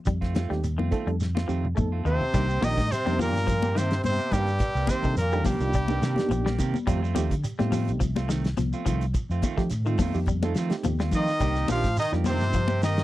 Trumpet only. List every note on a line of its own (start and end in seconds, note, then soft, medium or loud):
2.06 2.65 C5 loud
2.64 2.93 D#5 loud
2.92 3.19 C5 loud
3.21 3.79 A#4 loud
3.77 4.04 C5 medium
4.04 4.34 C5 loud
4.33 4.91 G4 loud
4.90 5.17 C5 medium
5.17 5.44 A#4 medium
5.46 6.55 G4 medium
11.16 11.67 D#5 loud
11.71 11.96 F5 loud
12.00 12.12 D#5 loud
12.27 12.80 C5 medium
12.84 13.04 D#5 medium